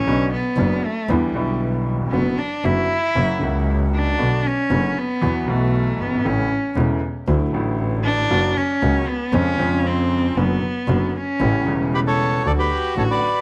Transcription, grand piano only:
0.07 0.29 B1 medium
0.07 0.29 B2 medium
0.07 0.29 C#3 medium
0.07 0.29 F#3 medium
0.07 0.29 B3 medium
0.07 0.29 D4 medium
0.59 0.80 F#1 medium
0.59 0.80 F#2 medium
0.59 0.80 C#3 medium
0.59 0.80 F#3 medium
0.59 0.80 B3 medium
0.59 0.80 D4 medium
1.10 1.31 E2 medium
1.10 1.31 D3 medium
1.10 1.31 E3 medium
1.10 1.31 G3 medium
1.10 1.31 B3 medium
1.10 1.32 E4 medium
1.33 2.09 B1 medium
1.33 2.09 B2 medium
1.33 2.08 D3 medium
1.33 2.08 G3 medium
1.33 2.09 B3 medium
1.33 2.10 E4 medium
1.93 2.00 D#2 soft
2.00 2.06 E2 medium
2.06 2.13 F2 medium
2.12 2.34 F#2 medium
2.12 2.34 D3 medium
2.12 2.34 F#3 medium
2.12 2.34 B3 medium
2.12 2.35 F#4 medium
2.64 2.86 F#2 medium
2.64 2.86 D3 medium
2.64 2.86 F#3 medium
2.64 2.86 B3 medium
2.64 2.86 F#4 medium
3.15 3.38 F#2 medium
3.15 3.37 C#3 medium
3.15 3.38 F#3 medium
3.15 3.38 A#3 medium
3.15 3.38 F#4 medium
3.39 4.15 C#2 medium
3.39 3.41 C#3 medium
3.39 4.15 C#3 medium
3.39 4.15 F#3 medium
3.39 4.16 A#3 medium
3.43 4.16 F#4 medium
4.18 4.41 B1 medium
4.18 4.41 B2 medium
4.18 4.41 D3 medium
4.18 4.41 A3 medium
4.18 4.41 B3 medium
4.18 4.41 F#4 medium
4.70 4.92 F#1 medium
4.70 4.92 F#2 medium
4.70 4.92 D3 medium
4.70 4.92 A3 medium
4.70 4.92 B3 medium
4.70 4.92 F#4 medium
5.21 5.44 E2 medium
5.21 5.44 E3 medium
5.21 5.44 F#3 medium
5.21 5.44 B3 medium
5.21 5.44 F#4 medium
5.46 6.21 B1 medium
5.46 6.21 B2 medium
5.46 6.20 E3 medium
5.46 6.21 F#3 medium
5.46 6.22 B3 medium
5.46 6.22 F#4 medium
6.06 6.12 F#1 medium
6.13 6.19 G1 medium
6.19 6.25 G#1 medium
6.25 6.47 A1 medium
6.25 6.47 A2 medium
6.25 6.47 C#3 medium
6.25 6.47 E3 medium
6.25 6.47 A3 medium
6.25 6.47 E4 medium
6.76 6.98 E1 medium
6.76 6.98 E2 medium
6.76 6.98 C#3 medium
6.76 6.98 E3 medium
6.76 6.98 A3 medium
6.76 6.98 E4 medium
7.27 7.50 D2 medium
7.27 7.50 D3 medium
7.27 7.49 F#3 medium
7.27 7.49 A3 medium
7.27 7.50 E4 medium
7.52 8.27 A1 medium
7.52 8.27 A2 medium
7.52 8.26 D3 medium
7.52 8.27 F#3 medium
7.52 8.27 A3 medium
7.52 8.28 E4 medium
8.31 8.52 F#2 medium
8.31 8.52 C#3 medium
8.31 8.53 F#3 medium
8.31 8.53 A#3 medium
8.31 8.52 F#4 medium
8.82 9.04 C#2 medium
8.82 9.04 C#3 medium
8.82 9.04 F#3 medium
8.82 9.04 A#3 medium
8.82 9.04 F#4 medium
9.33 9.55 F2 medium
9.33 9.55 C#3 medium
9.33 9.55 F3 medium
9.33 9.55 G#3 medium
9.33 9.56 F4 medium
9.58 10.33 F2 medium
9.58 10.32 C#3 medium
9.58 10.33 F3 medium
9.58 10.34 G#3 medium
9.58 10.34 F4 medium
10.37 10.59 F#2 medium
10.37 10.59 D3 medium
10.37 10.59 F#3 medium
10.37 10.59 B3 medium
10.37 10.59 F#4 medium
10.89 11.11 F#2 medium
10.89 11.11 D3 medium
10.89 11.11 F#3 medium
10.89 11.11 B3 medium
10.89 11.11 F#4 medium
11.40 11.63 A1 medium
11.40 11.63 A2 medium
11.40 11.63 C#3 medium
11.40 11.63 G3 medium
11.40 11.63 A3 medium
11.40 11.63 E4 medium
11.64 12.41 E1 medium
11.64 12.41 E2 medium
11.64 12.40 C#3 medium
11.64 12.40 G3 medium
11.64 12.41 A3 medium
11.68 12.42 E4 medium
12.45 12.67 D2 medium
12.45 12.67 D3 medium
12.45 12.67 F#3 medium
12.45 12.67 A3 medium
12.45 12.67 F#4 medium
12.97 13.19 A1 medium
12.97 13.19 A2 medium
12.97 13.19 D3 medium
12.97 13.19 F#3 medium
12.97 13.19 A3 medium
12.97 13.19 F#4 medium

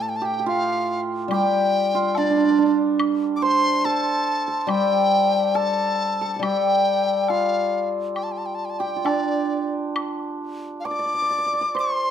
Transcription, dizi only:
0.02 0.11 A5 medium
0.09 0.18 G5 medium
0.16 0.27 A5 medium
0.25 0.47 G5 medium
0.48 1.01 F5 medium
1.33 2.19 G5 loud
2.18 2.80 D5 medium
3.36 3.44 D6 medium
3.43 3.86 C6 loud
3.85 4.61 A5 loud
4.61 4.72 A5 medium
4.70 5.57 G5 loud
5.56 6.34 A5 medium
6.34 6.44 A5 medium
6.43 7.31 G5 medium
7.30 7.89 F5 medium
8.15 8.25 G5 medium
8.23 8.33 A5 medium
8.32 8.39 G5 medium
8.38 8.47 A5 medium
8.46 8.56 G5 medium
8.55 8.67 A5 medium
8.65 8.71 G5 medium
8.70 8.81 A5 medium
8.79 9.07 G5 medium
9.05 9.73 D5 medium
10.80 10.87 F5 medium
10.86 11.76 D6 loud
11.79 12.11 C6 medium

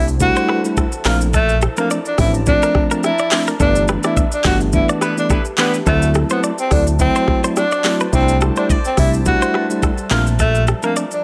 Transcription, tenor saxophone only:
0.22 0.62 F#4 loud
1.07 1.19 F4 medium
1.35 1.58 A3 loud
1.79 1.89 A#3 medium
2.07 2.17 D4 medium
2.20 2.33 E4 medium
2.48 2.89 D4 loud
3.05 3.45 E4 medium
3.61 3.85 D4 loud
4.05 4.15 E4 medium
4.34 4.44 D4 medium
4.46 4.59 F#4 medium
4.75 4.87 E4 medium
5.19 5.29 D4 medium
5.59 5.72 B3 medium
5.88 6.11 A3 loud
6.32 6.42 B3 medium
6.60 6.70 C4 medium
6.72 6.85 D4 medium
7.01 7.41 C4 loud
7.57 7.98 D4 medium
8.14 8.38 C4 loud
8.58 8.68 D4 medium
8.86 8.96 C4 medium
8.99 9.12 E4 medium
9.27 9.68 F#4 loud
10.12 10.25 F4 medium
10.40 10.64 A3 loud
10.84 10.95 A#3 medium
11.13 11.23 D4 medium

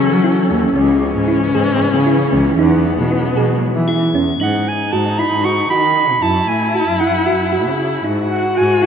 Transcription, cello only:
0.10 0.34 F#3 medium
0.50 0.73 D#2 medium
0.76 0.99 C#2 loud
1.15 1.38 G#2 medium
1.54 1.77 G#2 loud
1.93 2.16 C#3 loud
2.32 2.55 C#2 medium
2.58 2.82 E2 loud
2.97 3.21 B2 medium
3.36 3.59 B2 medium
3.75 3.98 E3 loud
4.14 4.38 E2 medium
4.40 4.64 G#2 medium
4.92 5.27 G#2 medium
5.31 5.66 G#2 medium
5.70 6.11 D#3 medium
6.09 6.21 B2 medium
6.22 6.46 F#2 medium
6.49 6.83 A2 medium
6.88 7.11 F#2 medium
7.27 7.68 F#2 medium
7.67 8.01 C#3 medium
8.05 8.28 G#2 medium
8.58 8.86 G#2 medium

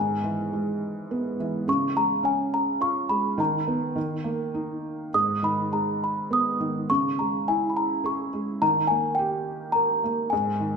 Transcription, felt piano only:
0.00 1.64 G#2 medium
0.24 1.35 E3 soft
0.53 1.64 G#3 soft
1.11 1.66 B3 soft
1.40 1.67 E3 medium
1.68 3.35 C#3 medium
1.96 3.07 G#3 soft
2.23 3.35 C#4 medium
2.81 3.37 F4 medium
3.09 3.38 G#3 medium
3.38 3.94 D#3 medium
3.68 3.95 B3 soft
3.95 5.10 D#3 medium
4.24 5.11 A#3 soft
4.54 5.12 D#4 soft
5.14 6.85 G#2 medium
5.43 6.56 D#3 soft
5.72 6.86 G#3 soft
6.31 6.87 B3 soft
6.60 6.89 D#3 soft
6.90 8.58 C#3 medium
7.19 8.30 G#3 soft
7.48 8.59 E4 soft
8.04 8.60 G#4 soft
8.33 8.61 G#3 soft
8.62 10.28 D#3 medium
8.90 10.00 A#3 soft
9.19 10.29 G4 soft
9.75 10.30 A#4 soft
10.04 10.31 A#3 soft
10.32 10.77 G#2 medium
10.60 10.77 D#3 soft

